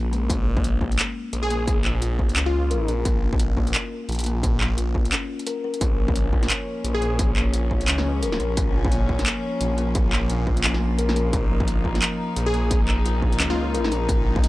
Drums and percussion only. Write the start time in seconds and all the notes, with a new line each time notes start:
0.13 closed hi-hat
0.30 kick, closed hi-hat
0.57 kick
0.64 closed hi-hat
0.81 kick
0.92 closed hi-hat
0.99 clap, closed hi-hat
1.33 closed hi-hat
1.50 closed hi-hat
1.67 kick, closed hi-hat
1.85 clap
2.02 closed hi-hat
2.19 kick
2.29 closed hi-hat
2.36 clap, closed hi-hat
2.71 closed hi-hat
2.88 closed hi-hat
3.05 kick, closed hi-hat
3.33 kick
3.40 closed hi-hat
3.57 kick
3.67 closed hi-hat
3.75 clap, closed hi-hat
4.09 closed hi-hat
4.12 closed hi-hat
4.15 closed hi-hat
4.19 closed hi-hat
4.20 closed hi-hat
4.24 closed hi-hat
4.26 closed hi-hat
4.43 kick, closed hi-hat
4.61 clap
4.78 closed hi-hat
4.95 kick
5.05 closed hi-hat
5.12 clap, closed hi-hat
5.39 closed hi-hat
5.47 closed hi-hat
5.74 closed hi-hat
5.81 kick, closed hi-hat
6.08 kick
6.16 closed hi-hat
6.33 kick
6.43 snare, closed hi-hat
6.50 clap, closed hi-hat
6.85 closed hi-hat
7.02 closed hi-hat
7.19 kick, closed hi-hat
7.36 clap
7.54 closed hi-hat
7.71 kick
7.81 closed hi-hat
7.88 clap, closed hi-hat
7.98 snare
8.23 closed hi-hat
8.32 snare
8.40 closed hi-hat
8.57 kick, closed hi-hat
8.85 kick
8.92 closed hi-hat
9.09 kick
9.19 snare, closed hi-hat
9.26 clap, closed hi-hat
9.61 closed hi-hat
9.78 closed hi-hat
9.95 kick, closed hi-hat
10.13 clap
10.30 closed hi-hat
10.47 kick
10.57 closed hi-hat
10.64 clap, closed hi-hat
10.74 snare
10.99 closed hi-hat
11.09 snare
11.16 closed hi-hat
11.33 kick, closed hi-hat
11.60 kick
11.68 closed hi-hat
11.85 kick
11.95 snare, closed hi-hat
12.02 clap, closed hi-hat
12.36 closed hi-hat
12.54 closed hi-hat
12.71 kick, closed hi-hat
12.88 clap
13.06 closed hi-hat
13.22 kick
13.32 closed hi-hat
13.40 clap, closed hi-hat
13.50 snare
13.75 closed hi-hat
13.84 snare
13.92 closed hi-hat
14.09 kick, closed hi-hat
14.36 kick
14.44 closed hi-hat